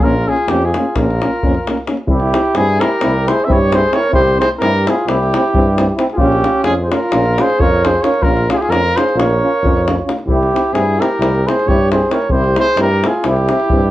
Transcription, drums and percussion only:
0.00 davul low
0.36 davul high
0.48 davul high
0.62 davul high
0.74 davul high
0.95 davul high, davul low
1.10 davul high
1.21 davul high
1.43 davul low
1.54 davul high
1.67 davul high
1.77 davul high
1.87 davul high
1.97 davul high
2.08 davul low
2.20 davul high
2.34 davul high
2.55 davul high
2.81 davul high
3.01 davul high
3.14 davul high
3.28 davul high
3.40 davul high
3.50 davul low
3.72 davul high
3.93 davul high
4.03 davul high
4.13 davul low
4.28 davul high
4.42 davul high
4.62 davul high
4.87 davul high
5.09 davul high
5.23 davul high
5.34 davul high
5.44 davul high
5.55 davul low
5.78 davul high
5.99 davul high
6.10 davul high
6.18 davul low
6.32 davul high
6.44 davul high
6.64 davul high
6.91 davul high
7.12 davul high
7.25 davul high
7.38 davul high
7.50 davul high
7.60 davul low
7.84 davul high
8.04 davul high
8.13 davul high
8.22 davul low
8.37 davul high
8.50 davul high
8.62 davul high
8.72 davul high
8.86 davul high
8.97 davul high
9.09 davul high
9.20 davul high
9.65 davul low
9.77 davul high
9.88 davul high
10.09 davul high
10.19 davul high
10.29 davul low
10.43 davul high
10.56 davul high
10.75 davul high
11.02 davul high
11.22 davul high
11.35 davul high
11.49 davul high
11.59 davul high
11.69 davul low
11.92 davul high
12.11 davul high
12.22 davul high
12.30 davul low
12.44 davul high
12.56 davul high
12.77 davul high
13.04 davul high
13.24 davul high
13.36 davul high
13.49 davul high
13.60 davul high
13.70 davul low

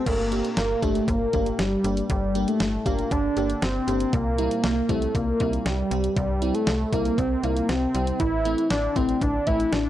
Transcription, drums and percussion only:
0.06 kick, closed hi-hat, crash
0.32 closed hi-hat
0.45 closed hi-hat
0.57 snare, closed hi-hat
0.83 kick, closed hi-hat
0.95 closed hi-hat
1.08 kick, closed hi-hat
1.33 kick, closed hi-hat
1.46 closed hi-hat
1.59 snare, closed hi-hat
1.84 closed hi-hat
1.97 closed hi-hat
2.10 kick, closed hi-hat
2.35 closed hi-hat
2.48 closed hi-hat
2.60 snare, closed hi-hat
2.86 kick, closed hi-hat
2.99 closed hi-hat
3.11 kick, closed hi-hat
3.37 closed hi-hat
3.50 closed hi-hat
3.62 snare, closed hi-hat
3.88 closed hi-hat
4.00 closed hi-hat
4.13 kick, closed hi-hat
4.38 closed hi-hat
4.51 closed hi-hat
4.64 snare, closed hi-hat
4.89 kick, closed hi-hat
5.02 closed hi-hat
5.15 kick, closed hi-hat
5.40 kick, closed hi-hat
5.53 closed hi-hat
5.66 snare, closed hi-hat
5.91 closed hi-hat
6.04 closed hi-hat
6.17 kick, closed hi-hat
6.42 closed hi-hat
6.55 closed hi-hat
6.67 snare, closed hi-hat
6.93 kick, closed hi-hat
7.05 closed hi-hat
7.18 kick, closed hi-hat
7.43 closed hi-hat
7.57 closed hi-hat
7.69 snare, closed hi-hat
7.95 closed hi-hat
8.07 closed hi-hat
8.20 kick, closed hi-hat
8.45 closed hi-hat
8.58 closed hi-hat
8.70 snare, closed hi-hat
8.96 kick, closed hi-hat
9.09 closed hi-hat
9.21 kick, closed hi-hat
9.47 kick, closed hi-hat
9.60 closed hi-hat
9.73 snare, closed hi-hat

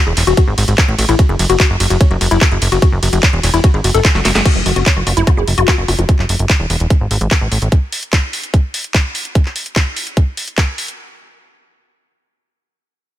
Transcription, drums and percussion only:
0.17 clap, open hi-hat, ride
0.27 closed hi-hat
0.37 kick, closed hi-hat
0.58 open hi-hat, ride
0.68 closed hi-hat
0.78 kick, clap, closed hi-hat
0.99 open hi-hat, ride
1.09 closed hi-hat
1.19 kick, closed hi-hat
1.39 open hi-hat, ride
1.50 closed hi-hat
1.60 kick, clap, closed hi-hat
1.80 open hi-hat, ride
1.90 closed hi-hat
2.01 kick, closed hi-hat
2.21 open hi-hat, ride
2.31 closed hi-hat
2.41 kick, clap, closed hi-hat
2.62 open hi-hat, ride
2.72 closed hi-hat
2.82 kick, closed hi-hat
3.03 open hi-hat, ride
3.13 closed hi-hat
3.23 kick, clap, closed hi-hat
3.43 clap, open hi-hat, ride
3.54 closed hi-hat
3.64 kick, closed hi-hat
3.84 open hi-hat, ride
3.94 closed hi-hat
4.05 kick, clap, closed hi-hat
4.15 snare
4.25 snare, open hi-hat, ride
4.35 snare, closed hi-hat
4.45 kick, closed hi-hat, crash
4.66 open hi-hat
4.76 closed hi-hat
4.86 kick, clap, closed hi-hat
5.07 open hi-hat
5.17 closed hi-hat
5.27 kick, closed hi-hat
5.48 open hi-hat
5.58 closed hi-hat
5.68 kick, clap, closed hi-hat
5.88 open hi-hat
5.99 closed hi-hat
6.09 kick, closed hi-hat
6.19 clap
6.29 open hi-hat
6.39 closed hi-hat
6.50 kick, clap, closed hi-hat
6.70 open hi-hat
6.80 closed hi-hat
6.90 kick, closed hi-hat
7.11 open hi-hat
7.21 closed hi-hat
7.31 kick, clap, closed hi-hat
7.52 open hi-hat
7.62 closed hi-hat
7.72 kick, closed hi-hat
7.92 open hi-hat
8.03 closed hi-hat
8.13 kick, clap, closed hi-hat
8.33 open hi-hat
8.43 closed hi-hat
8.54 kick, closed hi-hat
8.74 open hi-hat
8.84 closed hi-hat
8.94 kick, clap, closed hi-hat
9.15 open hi-hat
9.25 closed hi-hat
9.35 kick, closed hi-hat
9.45 clap
9.56 open hi-hat
9.66 closed hi-hat
9.76 kick, clap, closed hi-hat
9.96 open hi-hat
10.07 closed hi-hat
10.17 kick, closed hi-hat
10.37 open hi-hat
10.48 closed hi-hat
10.58 kick, clap, closed hi-hat
10.78 open hi-hat
10.88 closed hi-hat

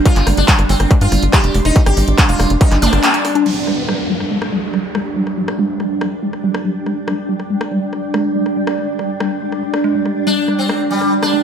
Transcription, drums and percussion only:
0.05 kick, cross-stick, closed hi-hat
0.16 clap, closed hi-hat
0.27 cross-stick, open hi-hat
0.37 closed hi-hat
0.48 kick, clap, closed hi-hat
0.59 cross-stick, closed hi-hat
0.69 open hi-hat
0.80 cross-stick, closed hi-hat
0.91 kick, closed hi-hat
1.01 closed hi-hat
1.12 cross-stick, open hi-hat
1.23 closed hi-hat
1.33 kick, cross-stick, clap, closed hi-hat
1.44 closed hi-hat
1.54 open hi-hat
1.65 cross-stick, closed hi-hat
1.76 kick, closed hi-hat
1.86 cross-stick, closed hi-hat
1.97 open hi-hat
2.08 closed hi-hat
2.18 kick, cross-stick, clap, closed hi-hat
2.29 closed hi-hat
2.40 cross-stick, open hi-hat
2.50 closed hi-hat
2.61 kick, closed hi-hat
2.71 cross-stick, clap, closed hi-hat
2.82 open hi-hat
2.93 cross-stick, closed hi-hat
3.03 clap, closed hi-hat
3.14 closed hi-hat
3.25 cross-stick, open hi-hat
3.35 closed hi-hat
3.46 crash
3.67 cross-stick
3.88 cross-stick
4.20 cross-stick
4.42 cross-stick
4.74 cross-stick
4.95 cross-stick
5.27 cross-stick
5.48 cross-stick
5.80 cross-stick
6.01 cross-stick
6.33 cross-stick
6.54 cross-stick
6.86 cross-stick
7.08 cross-stick
7.40 cross-stick
7.61 cross-stick
7.93 cross-stick
8.14 cross-stick
8.46 cross-stick
8.67 cross-stick
8.99 cross-stick
9.20 cross-stick
9.52 cross-stick
9.74 cross-stick
10.06 cross-stick
10.48 cross-stick
10.69 cross-stick
11.01 cross-stick
11.23 cross-stick

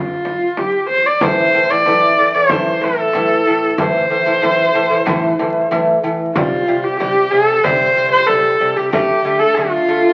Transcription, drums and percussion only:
0.25 frame drum
0.57 frame drum
0.90 frame drum
1.21 frame drum
1.54 frame drum
1.86 frame drum
2.18 frame drum
2.49 frame drum
2.82 frame drum
3.13 frame drum
3.47 frame drum
3.78 frame drum
4.11 frame drum
4.43 frame drum
4.76 frame drum
5.07 frame drum
5.39 frame drum
5.72 frame drum
6.04 frame drum
6.36 frame drum
7.00 frame drum
7.33 frame drum
7.64 frame drum
8.28 frame drum
8.61 frame drum
8.93 frame drum
9.26 frame drum
9.57 frame drum
9.89 frame drum

